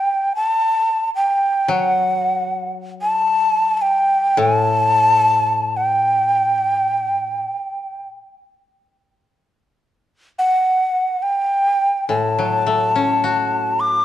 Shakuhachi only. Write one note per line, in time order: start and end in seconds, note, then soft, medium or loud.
0.00 0.33 G5 medium
0.36 1.10 A5 medium
1.16 1.72 G5 medium
1.71 2.72 F#5 medium
3.02 3.77 A5 loud
3.77 3.83 A5 medium
3.82 4.40 G5 medium
4.39 4.57 G#5 loud
4.57 5.78 A5 loud
5.77 8.05 G5 medium
10.39 11.24 F#5 medium
11.22 12.08 G5 medium
12.08 13.82 A5 medium
13.80 14.05 D6 loud